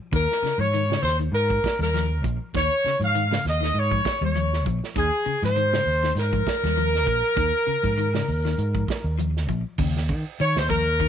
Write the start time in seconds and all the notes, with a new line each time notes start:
0.12 D#2 D#3 A#4, kick, closed hi-hat
0.32 snare
0.42 C#3, muted fingered electric bass stroke, snare, closed hi-hat
0.58 G#2 F3 C#5, closed hi-hat
0.74 D#3, closed hi-hat
0.90 C#3, snare
1.03 D#2 C5, snare, open hi-hat
1.19 D#3, closed hi-hat
1.32 G#2 A#4, closed hi-hat
1.50 muted clean electric guitar stroke, kick
1.64 muted fingered electric bass stroke, kick, snare, closed hi-hat
1.79 D#2 G3 A#4, snare, closed hi-hat
1.94 F3, snare, closed hi-hat
2.24 A#1 F3, kick, closed hi-hat
2.54 D#2 D#3 C#5, kick, snare, closed hi-hat
2.84 C#3, muted fingered electric bass stroke, snare, closed hi-hat
3.00 G#2 F3, closed hi-hat
3.04 F5
3.15 D#3, closed hi-hat
3.31 C#3, snare
3.45 D#2 D#5, snare, open hi-hat
3.61 D#3, snare
3.74 G#2, closed hi-hat
3.79 C#5
3.91 F3, kick
4.05 muted fingered electric bass stroke, kick, snare, closed hi-hat
4.21 D#2 G3 C#5
4.36 F3, closed hi-hat
4.53 snare
4.66 A#1 F3, kick, closed hi-hat
4.84 snare
4.96 D#2 D#3 G#4, kick, closed hi-hat
5.25 C#3, muted fingered electric bass stroke, closed hi-hat
5.42 G#2 F3 C5, snare, closed hi-hat
5.56 D#3, closed hi-hat
5.73 C#3, snare
5.86 D#2, open hi-hat
6.02 D#3, snare, closed hi-hat
6.15 G#2 A#4, snare, closed hi-hat
6.33 F3, kick
6.46 muted fingered electric bass stroke, kick, snare, closed hi-hat
6.63 D#2 G3, snare, closed hi-hat
6.77 F3, closed hi-hat
6.95 snare
7.07 A#1 F3, kick, closed hi-hat
7.36 D#2 D#3, kick, closed hi-hat
7.67 C#3, muted fingered electric bass stroke, closed hi-hat
7.83 G#2 F3, kick, closed hi-hat
7.97 D#3, closed hi-hat
8.14 C#3, snare
8.28 D#2, open hi-hat
8.45 D#3, snare
8.58 G#2, closed hi-hat
8.75 F3, kick
8.88 muted fingered electric bass stroke, kick, snare, closed hi-hat
9.04 D#2
9.19 F3, closed hi-hat
9.37 snare
9.48 A#1 F3, kick, closed hi-hat
9.78 D#2 C#3, kick, crash
9.95 snare, closed hi-hat
10.08 D#3, kick, closed hi-hat
10.25 closed hi-hat
10.40 D#3 C#5, muted clean electric guitar stroke, closed hi-hat
10.55 D#2 C5, snare, closed hi-hat
10.69 F3 A#4, kick, open hi-hat
10.86 closed hi-hat
10.99 D#3, kick, closed hi-hat